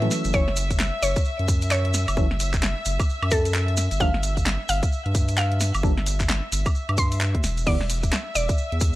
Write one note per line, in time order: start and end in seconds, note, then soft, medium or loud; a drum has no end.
0.00 0.32 E3 medium
0.00 0.32 F#3 medium
0.00 0.32 A3 medium
0.00 0.32 C#4 medium
0.00 0.27 B4 loud
0.00 7.65 E5 medium
0.00 closed hi-hat medium
0.11 snare soft
0.11 open hi-hat loud
0.11 maracas medium
0.24 0.91 F#1 medium
0.24 closed hi-hat medium
0.24 maracas medium
0.33 0.43 E3 medium
0.33 0.43 F#3 medium
0.33 0.43 A3 medium
0.33 0.43 C#4 medium
0.33 0.52 C#5 loud
0.33 kick loud
0.33 maracas soft
0.48 snare soft
0.56 open hi-hat loud
0.56 maracas medium
0.71 kick medium
0.71 closed hi-hat medium
0.71 maracas medium
0.80 clap loud
0.80 snare medium
0.80 maracas soft
1.02 1.15 F#1 loud
1.02 1.20 C#5 medium
1.02 open hi-hat loud
1.02 maracas medium
1.16 kick loud
1.16 closed hi-hat medium
1.16 maracas medium
1.25 maracas soft
1.39 2.06 F#2 medium
1.39 closed hi-hat soft
1.48 kick loud
1.48 open hi-hat loud
1.48 maracas loud
1.62 closed hi-hat medium
1.62 maracas soft
1.71 1.89 C#5 medium
1.71 clap loud
1.71 maracas soft
1.85 closed hi-hat medium
1.94 snare soft
1.94 open hi-hat loud
1.94 maracas loud
2.08 2.74 F#1 medium
2.08 closed hi-hat medium
2.08 high woodblock medium
2.08 maracas soft
2.17 2.26 E3 medium
2.17 2.26 F#3 medium
2.17 2.26 A3 medium
2.17 2.26 C#4 medium
2.17 kick loud
2.17 maracas soft
2.31 snare soft
2.40 open hi-hat loud
2.40 maracas medium
2.54 kick medium
2.54 clap medium
2.54 closed hi-hat medium
2.54 maracas medium
2.63 clap loud
2.63 snare medium
2.63 maracas soft
2.85 2.98 F#1 loud
2.85 open hi-hat loud
2.85 maracas medium
3.00 kick loud
3.00 closed hi-hat medium
3.00 high woodblock medium
3.00 maracas medium
3.09 maracas soft
3.22 3.89 F#2 medium
3.22 closed hi-hat soft
3.22 high woodblock medium
3.31 3.93 A4 medium
3.31 kick loud
3.31 open hi-hat loud
3.31 maracas medium
3.45 open hi-hat medium
3.45 maracas medium
3.54 clap loud
3.54 maracas soft
3.68 closed hi-hat medium
3.77 snare soft
3.77 open hi-hat loud
3.77 maracas medium
3.91 4.58 G1 medium
3.91 closed hi-hat medium
3.91 maracas soft
4.00 4.09 F3 medium
4.00 4.09 G3 medium
4.00 4.09 A#3 medium
4.00 4.09 D4 medium
4.00 4.18 F5 loud
4.00 kick loud
4.00 maracas soft
4.14 snare soft
4.23 open hi-hat loud
4.23 maracas medium
4.37 kick medium
4.37 closed hi-hat medium
4.37 maracas soft
4.46 clap loud
4.46 snare medium
4.46 maracas soft
4.69 4.81 G1 loud
4.69 4.87 F5 medium
4.69 open hi-hat loud
4.69 maracas medium
4.83 kick loud
4.83 closed hi-hat medium
4.83 maracas medium
4.92 maracas soft
5.06 5.72 G2 loud
5.06 closed hi-hat soft
5.15 kick loud
5.15 open hi-hat loud
5.15 maracas medium
5.28 closed hi-hat medium
5.28 maracas soft
5.37 5.55 F5 medium
5.37 clap loud
5.37 maracas soft
5.52 closed hi-hat medium
5.60 snare soft
5.60 open hi-hat loud
5.60 maracas medium
5.74 6.41 G1 medium
5.74 closed hi-hat medium
5.74 high woodblock medium
5.74 maracas medium
5.83 5.93 F3 medium
5.83 5.92 G3 medium
5.83 5.92 A#3 medium
5.83 5.92 D4 medium
5.83 kick loud
5.83 maracas soft
5.97 snare soft
6.06 open hi-hat loud
6.06 maracas medium
6.20 kick medium
6.20 clap medium
6.20 closed hi-hat medium
6.20 maracas medium
6.29 clap loud
6.29 snare medium
6.29 maracas soft
6.52 6.65 G1 loud
6.52 open hi-hat loud
6.52 maracas medium
6.66 kick loud
6.66 closed hi-hat medium
6.66 high woodblock medium
6.66 maracas soft
6.75 maracas soft
6.89 7.36 G2 loud
6.89 closed hi-hat soft
6.89 high woodblock medium
6.97 7.59 C6 loud
6.97 kick loud
6.97 open hi-hat loud
6.97 maracas medium
7.12 open hi-hat medium
7.12 maracas soft
7.20 clap loud
7.20 maracas soft
7.35 7.43 D2 loud
7.35 kick medium
7.35 closed hi-hat medium
7.44 8.11 E1 loud
7.44 snare soft
7.44 open hi-hat loud
7.44 maracas medium
7.58 closed hi-hat medium
7.58 maracas soft
7.67 7.76 D3 medium
7.67 7.76 E3 medium
7.67 7.76 G3 medium
7.67 7.76 B3 medium
7.67 7.85 D5 loud
7.67 8.96 E5 medium
7.67 kick loud
7.67 crash medium
7.67 maracas soft
7.81 snare soft
7.90 open hi-hat loud
7.90 maracas medium
8.03 kick medium
8.03 closed hi-hat medium
8.03 maracas medium
8.13 clap loud
8.13 snare medium
8.13 maracas soft
8.35 8.48 E1 loud
8.35 8.53 D5 medium
8.35 open hi-hat loud
8.35 maracas medium
8.49 kick loud
8.49 closed hi-hat medium
8.49 maracas medium
8.58 maracas soft
8.72 8.96 E2 loud
8.72 closed hi-hat soft
8.80 kick loud
8.80 open hi-hat loud
8.80 maracas medium